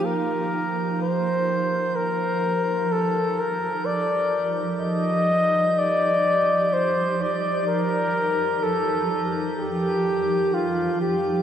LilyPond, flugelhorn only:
\new Staff \with { instrumentName = "Flugelhorn" } { \time 4/4 \key ees \lydian \tempo 4 = 63 bes'4 c''4 bes'4 a'8 bes'8 | d''8 r8 ees''4 d''4 c''8 d''8 | bes'4 a'8 r8 g'4 f'8 g'8 | }